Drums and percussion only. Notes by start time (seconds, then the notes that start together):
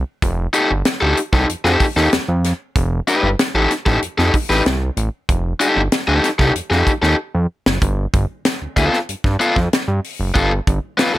0.22 kick, closed hi-hat
0.53 closed hi-hat
0.85 snare, closed hi-hat
1.17 closed hi-hat
1.33 kick, snare
1.49 closed hi-hat
1.65 snare
1.80 kick, open hi-hat
1.97 snare
2.13 snare, closed hi-hat
2.44 snare, closed hi-hat
2.76 kick, closed hi-hat
3.08 closed hi-hat
3.39 snare, closed hi-hat
3.71 snare, closed hi-hat
3.86 kick, snare
4.02 closed hi-hat
4.19 snare
4.34 kick, open hi-hat
4.51 snare
4.66 snare, closed hi-hat
4.97 closed hi-hat
5.29 kick, closed hi-hat
5.60 closed hi-hat
5.92 snare, closed hi-hat
6.24 snare, closed hi-hat
6.39 kick, snare
6.56 closed hi-hat
6.72 snare
6.87 kick, closed hi-hat
7.03 snare
7.66 snare
7.82 kick, closed hi-hat
8.13 kick, closed hi-hat
8.45 snare, closed hi-hat
8.77 kick, snare, closed hi-hat
8.93 snare
9.09 closed hi-hat
9.24 kick, snare
9.41 closed hi-hat
9.56 kick, snare
9.73 snare, closed hi-hat
10.04 open hi-hat
10.36 kick, closed hi-hat
10.67 kick, closed hi-hat
10.99 snare, closed hi-hat